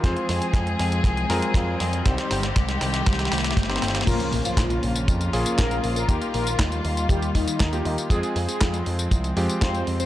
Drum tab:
CC |--------------------------------|--------------------------------|x-------------------------------|--------------------------------|
HH |x-x-o-x-x-x-o-x-x-x-o-x-x---o-x-|x-x-o-x-x-x-o-x-x-x-o-x-x---o-x-|x-x-o-x-x-x-o-x-x-x-o-x-x-x-o-x-|x-x-o-x-x-x-o-x-x-x-o-x-x-x-o-x-|
TB |--------------------------------|--------------------------------|x-x---x-x-x---x-x-x---x-x-x---x-|x-x---x-x-x---x-x-x---x-x-x---x-|
CP |--------------------------------|--------------------------------|--------x---------------x-------|--------x---------------x-------|
SD |o---o---o---o---o---o---o---o---|o-o-o-o-o-o-o-o-oooooooooooooooo|--------o---------------o-------|--------o---------------o-------|
BD |o-------o-------o-------o-------|o-------o-------o-------o-------|o-------o-------o-------o-------|o-------o-------o---o---o-------|

CC |--------------------------------|
HH |x-x-o-x-x-x-o-x-x-x-o-x-x-x-o-x-|
TB |x-x---x-x-x---x-x-x---x-x-x---x-|
CP |--------x---------------x-------|
SD |--------o---------------o-------|
BD |o-------o-------o-------o-------|